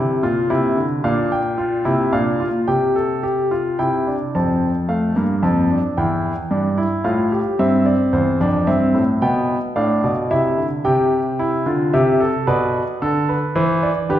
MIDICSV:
0, 0, Header, 1, 2, 480
1, 0, Start_track
1, 0, Key_signature, -1, "major"
1, 0, Tempo, 541516
1, 922, Time_signature, 3, 2, 24, 8
1, 1884, Tempo, 552995
1, 4284, Tempo, 541516
1, 9564, Key_signature, 0, "major"
1, 12531, End_track
2, 0, Start_track
2, 0, Title_t, "Grand piano"
2, 0, Program_c, 0, 0
2, 0, Note_on_c, 0, 48, 68
2, 0, Note_on_c, 0, 64, 74
2, 180, Note_off_c, 0, 64, 0
2, 196, Note_off_c, 0, 48, 0
2, 205, Note_on_c, 0, 65, 69
2, 206, Note_on_c, 0, 46, 58
2, 436, Note_off_c, 0, 46, 0
2, 436, Note_off_c, 0, 65, 0
2, 444, Note_on_c, 0, 48, 72
2, 445, Note_on_c, 0, 64, 72
2, 676, Note_off_c, 0, 48, 0
2, 682, Note_on_c, 0, 50, 59
2, 741, Note_off_c, 0, 64, 0
2, 914, Note_off_c, 0, 50, 0
2, 921, Note_on_c, 0, 46, 80
2, 922, Note_on_c, 0, 77, 69
2, 923, Note_on_c, 0, 62, 70
2, 1154, Note_off_c, 0, 77, 0
2, 1169, Note_on_c, 0, 79, 66
2, 1220, Note_off_c, 0, 62, 0
2, 1399, Note_on_c, 0, 65, 64
2, 1621, Note_off_c, 0, 46, 0
2, 1634, Note_off_c, 0, 65, 0
2, 1641, Note_on_c, 0, 64, 66
2, 1642, Note_on_c, 0, 48, 73
2, 1866, Note_off_c, 0, 79, 0
2, 1876, Note_off_c, 0, 48, 0
2, 1876, Note_off_c, 0, 64, 0
2, 1884, Note_on_c, 0, 77, 71
2, 1885, Note_on_c, 0, 46, 73
2, 1887, Note_on_c, 0, 62, 65
2, 2117, Note_off_c, 0, 62, 0
2, 2122, Note_on_c, 0, 65, 60
2, 2181, Note_off_c, 0, 77, 0
2, 2182, Note_off_c, 0, 46, 0
2, 2356, Note_off_c, 0, 65, 0
2, 2362, Note_on_c, 0, 79, 60
2, 2363, Note_on_c, 0, 48, 60
2, 2363, Note_on_c, 0, 67, 62
2, 2597, Note_off_c, 0, 67, 0
2, 2606, Note_on_c, 0, 69, 63
2, 2840, Note_off_c, 0, 69, 0
2, 2845, Note_on_c, 0, 67, 67
2, 3081, Note_off_c, 0, 67, 0
2, 3088, Note_on_c, 0, 65, 62
2, 3301, Note_off_c, 0, 79, 0
2, 3302, Note_off_c, 0, 48, 0
2, 3323, Note_off_c, 0, 65, 0
2, 3328, Note_on_c, 0, 79, 60
2, 3330, Note_on_c, 0, 64, 56
2, 3332, Note_on_c, 0, 48, 58
2, 3564, Note_off_c, 0, 64, 0
2, 3572, Note_on_c, 0, 62, 52
2, 3627, Note_off_c, 0, 79, 0
2, 3630, Note_off_c, 0, 48, 0
2, 3805, Note_off_c, 0, 62, 0
2, 3814, Note_on_c, 0, 81, 59
2, 3815, Note_on_c, 0, 41, 63
2, 3816, Note_on_c, 0, 60, 59
2, 4106, Note_off_c, 0, 81, 0
2, 4107, Note_off_c, 0, 60, 0
2, 4280, Note_on_c, 0, 57, 57
2, 4282, Note_on_c, 0, 77, 57
2, 4504, Note_off_c, 0, 41, 0
2, 4515, Note_off_c, 0, 57, 0
2, 4523, Note_on_c, 0, 58, 52
2, 4525, Note_on_c, 0, 43, 63
2, 4580, Note_off_c, 0, 77, 0
2, 4757, Note_off_c, 0, 58, 0
2, 4758, Note_off_c, 0, 43, 0
2, 4760, Note_on_c, 0, 41, 75
2, 4761, Note_on_c, 0, 81, 59
2, 4762, Note_on_c, 0, 60, 57
2, 4997, Note_off_c, 0, 60, 0
2, 5007, Note_on_c, 0, 62, 51
2, 5059, Note_off_c, 0, 41, 0
2, 5060, Note_off_c, 0, 81, 0
2, 5239, Note_off_c, 0, 62, 0
2, 5245, Note_on_c, 0, 79, 59
2, 5247, Note_on_c, 0, 40, 69
2, 5248, Note_on_c, 0, 64, 62
2, 5542, Note_off_c, 0, 40, 0
2, 5542, Note_off_c, 0, 64, 0
2, 5718, Note_on_c, 0, 43, 73
2, 5719, Note_on_c, 0, 62, 65
2, 5950, Note_off_c, 0, 62, 0
2, 5956, Note_on_c, 0, 64, 63
2, 6013, Note_off_c, 0, 43, 0
2, 6167, Note_off_c, 0, 79, 0
2, 6187, Note_off_c, 0, 64, 0
2, 6192, Note_on_c, 0, 77, 59
2, 6193, Note_on_c, 0, 45, 70
2, 6194, Note_on_c, 0, 65, 62
2, 6427, Note_off_c, 0, 65, 0
2, 6439, Note_on_c, 0, 67, 60
2, 6490, Note_off_c, 0, 77, 0
2, 6491, Note_off_c, 0, 45, 0
2, 6669, Note_off_c, 0, 67, 0
2, 6679, Note_on_c, 0, 60, 76
2, 6680, Note_on_c, 0, 43, 70
2, 6681, Note_on_c, 0, 76, 68
2, 6910, Note_off_c, 0, 76, 0
2, 6913, Note_on_c, 0, 74, 62
2, 6976, Note_off_c, 0, 43, 0
2, 7147, Note_off_c, 0, 74, 0
2, 7154, Note_on_c, 0, 72, 71
2, 7156, Note_on_c, 0, 40, 66
2, 7376, Note_off_c, 0, 60, 0
2, 7389, Note_off_c, 0, 40, 0
2, 7400, Note_on_c, 0, 41, 64
2, 7402, Note_on_c, 0, 62, 81
2, 7453, Note_off_c, 0, 72, 0
2, 7631, Note_off_c, 0, 41, 0
2, 7632, Note_off_c, 0, 62, 0
2, 7635, Note_on_c, 0, 76, 64
2, 7637, Note_on_c, 0, 43, 59
2, 7637, Note_on_c, 0, 60, 76
2, 7870, Note_off_c, 0, 43, 0
2, 7876, Note_on_c, 0, 45, 58
2, 7934, Note_off_c, 0, 76, 0
2, 7935, Note_off_c, 0, 60, 0
2, 8110, Note_off_c, 0, 45, 0
2, 8122, Note_on_c, 0, 59, 71
2, 8122, Note_on_c, 0, 79, 70
2, 8123, Note_on_c, 0, 47, 62
2, 8419, Note_off_c, 0, 79, 0
2, 8420, Note_off_c, 0, 47, 0
2, 8420, Note_off_c, 0, 59, 0
2, 8598, Note_on_c, 0, 62, 77
2, 8600, Note_on_c, 0, 45, 65
2, 8600, Note_on_c, 0, 77, 63
2, 8835, Note_off_c, 0, 45, 0
2, 8846, Note_on_c, 0, 47, 65
2, 8898, Note_off_c, 0, 62, 0
2, 8899, Note_off_c, 0, 77, 0
2, 9078, Note_off_c, 0, 47, 0
2, 9086, Note_on_c, 0, 48, 63
2, 9086, Note_on_c, 0, 64, 65
2, 9087, Note_on_c, 0, 76, 63
2, 9317, Note_off_c, 0, 48, 0
2, 9322, Note_on_c, 0, 50, 47
2, 9383, Note_off_c, 0, 64, 0
2, 9384, Note_off_c, 0, 76, 0
2, 9556, Note_off_c, 0, 50, 0
2, 9563, Note_on_c, 0, 79, 65
2, 9564, Note_on_c, 0, 48, 79
2, 9565, Note_on_c, 0, 67, 66
2, 9864, Note_off_c, 0, 67, 0
2, 10049, Note_on_c, 0, 64, 72
2, 10265, Note_off_c, 0, 48, 0
2, 10281, Note_off_c, 0, 64, 0
2, 10285, Note_on_c, 0, 50, 74
2, 10287, Note_on_c, 0, 65, 61
2, 10498, Note_off_c, 0, 79, 0
2, 10520, Note_off_c, 0, 50, 0
2, 10521, Note_off_c, 0, 65, 0
2, 10528, Note_on_c, 0, 76, 63
2, 10529, Note_on_c, 0, 48, 84
2, 10530, Note_on_c, 0, 67, 72
2, 10762, Note_off_c, 0, 67, 0
2, 10766, Note_on_c, 0, 69, 67
2, 10826, Note_off_c, 0, 76, 0
2, 10827, Note_off_c, 0, 48, 0
2, 11000, Note_off_c, 0, 69, 0
2, 11004, Note_on_c, 0, 71, 76
2, 11005, Note_on_c, 0, 47, 79
2, 11005, Note_on_c, 0, 74, 62
2, 11305, Note_off_c, 0, 71, 0
2, 11306, Note_off_c, 0, 47, 0
2, 11488, Note_on_c, 0, 50, 87
2, 11490, Note_on_c, 0, 69, 78
2, 11723, Note_off_c, 0, 69, 0
2, 11728, Note_on_c, 0, 71, 68
2, 11786, Note_off_c, 0, 50, 0
2, 11939, Note_off_c, 0, 74, 0
2, 11961, Note_off_c, 0, 71, 0
2, 11964, Note_on_c, 0, 52, 91
2, 11965, Note_on_c, 0, 72, 77
2, 12208, Note_on_c, 0, 74, 70
2, 12262, Note_off_c, 0, 52, 0
2, 12263, Note_off_c, 0, 72, 0
2, 12439, Note_off_c, 0, 74, 0
2, 12442, Note_on_c, 0, 50, 73
2, 12445, Note_on_c, 0, 71, 72
2, 12447, Note_on_c, 0, 67, 85
2, 12531, Note_off_c, 0, 50, 0
2, 12531, Note_off_c, 0, 67, 0
2, 12531, Note_off_c, 0, 71, 0
2, 12531, End_track
0, 0, End_of_file